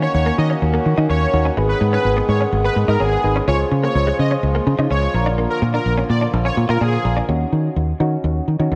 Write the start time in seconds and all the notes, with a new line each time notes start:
Already playing: D#3 A#3 C#4 D#4 F#4 C#5
0.02 C#4 C#5
0.14 D#2 C#5
0.26 A#3
0.38 D#3 D#5, muted clean electric guitar stroke
0.50 C#4
0.62 D#2
0.74 A#3
0.86 D#3, muted clean electric guitar stroke
0.98 D#3 D#4
1.09 D#2 C#4 C#5
1.22 muted clean electric guitar stroke
1.33 D#2 D#4 F#4 C#5
1.45 C#4
1.57 G#1 G#3 B3 D#4 G#4 B4
1.69 B4
1.81 G#2, muted clean electric guitar stroke
1.93 C#4 B4
2.05 G#1
2.17 B3
2.29 G#2 C#5, muted clean electric guitar stroke
2.41 C#4
2.52 G#1
2.64 B3 B4
2.76 G#2, muted clean electric guitar stroke
2.88 G#2 D#4 A#4
3.00 G#1 C#4 G#4
3.12 muted clean electric guitar stroke
3.24 G#1 D#4 G#4 B4
3.36 C#4
3.48 C#2 C#3 F3 G#3 C#4 F4 G#4 C#5
3.71 C#3, muted clean electric guitar stroke
3.83 A#3 C#5
3.95 C#2 C#5
4.07 G#3
4.19 C#3 D#5, muted clean electric guitar stroke
4.31 C#4
4.43 C#2
4.55 A#3
4.67 C#3, muted clean electric guitar stroke
4.79 C#3 D#4
4.91 C#2 C#4 C#5
5.02 muted clean electric guitar stroke
5.14 A#1 D3 A#3 D4 F4 A#4
5.26 D4
5.38 A#3
5.50 A#4
5.62 A#2, muted clean electric guitar stroke
5.74 D4 A#4
5.86 A#1
5.98 C#4
6.09 A#2 D5, muted clean electric guitar stroke
6.21 D4
6.33 A#1
6.45 C#4 C#5
6.57 A#2, muted clean electric guitar stroke
6.69 A#2 F4 A#4
6.81 A#2 D4 G#4
6.93 muted clean electric guitar stroke
7.05 A#1 D4 F4 A#4
7.17 D4
7.28 D#2 C#4 D#4 F#4
7.52 D#3
7.76 D#2
8.00 D#3 C#4 D#4 F#4
8.24 D#2
8.48 D#3
8.59 D#3 C#4 D#4 F#4
8.72 D#2